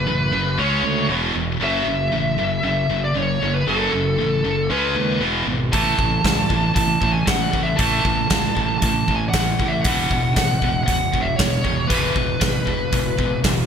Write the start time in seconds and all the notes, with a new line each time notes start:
Already playing: B4
0.06 A1 F#2 C#3
0.32 F#1 F#2 C#3
0.58 C#2 C#3 G#3 C#4 C#5
0.83 D2 C#3 G#3
1.09 E1 E2 B2 E3
1.34 E1 E2 B2
1.60 F#1 F#2 C#3 F#3 E5
1.86 F#1 F#2 C#3
2.12 A1 F#2 C#3
2.37 F#1 F#2 C#3
2.63 F#1 F#2 C#3 E5
2.89 F#1 F#2 C#3
3.04 D5
3.15 F#1 F#2 C#3 C#5
3.42 F#1 F#2 C#3
3.54 B4
3.67 F#1 F#2 C#3 F#3 A4
3.92 F#1 F#2 C#3
4.18 A1 F#2 C#3
4.44 F#1 F#2 C#3
4.70 C#2 C#3 G#3 C#4 B4
4.95 D#2 C#3 G#3
5.20 E1 E2 B2 E3
5.47 G#1 E2 B2
5.72 A1 A2 E3 A3 A5, kick, open hi-hat
5.97 A1 A2 E3, kick
6.24 C#2 A2 E3, kick, snare, open hi-hat
6.49 A1 A2 E3, kick
6.74 A1 A2 E3 A5, kick, open hi-hat
7.01 A1 A2 E3, kick
7.13 G#5
7.26 A1 A2 E3 F#5, kick, snare, open hi-hat
7.52 A1 A2 E3, kick
7.63 E5
7.76 A1 A2 E3 A3 A5, kick, open hi-hat
8.04 A1 A2 E3, kick
8.30 C#2 A2 E3, kick, snare, open hi-hat
8.55 A1 A2 E3, kick
8.78 A1 A2 A5, open hi-hat
8.82 E3, kick
9.07 A1 A2 E3, kick
9.16 G#5
9.30 F#5, open hi-hat
9.34 A1 A2 E3, kick, snare
9.59 A1 A2 E3, kick
9.68 E5
9.81 E1 E2 B2 E3 F#5, kick, open hi-hat
10.11 E1 E2 B2, kick
10.36 G#1 E2 B2, kick, snare, open hi-hat
10.62 E1 E2 B2, kick
10.84 E1 E2 B2 F#5, open hi-hat
10.88 kick
11.12 E1 E2 B2, kick
11.22 E5
11.36 E1 E2 B2 C#5, kick, snare, open hi-hat
11.64 E1 E2 B2, kick
11.88 E1 E2 B2 E3 B4, kick, open hi-hat
12.15 E1 E2 B2, kick
12.40 G#1 E2 B2, kick, snare, open hi-hat
12.66 E1 E2 B2, kick
12.92 E1 E2 B2, kick, open hi-hat
13.18 E1 E2 B2, kick
13.44 E1 E2 B2, kick, snare, open hi-hat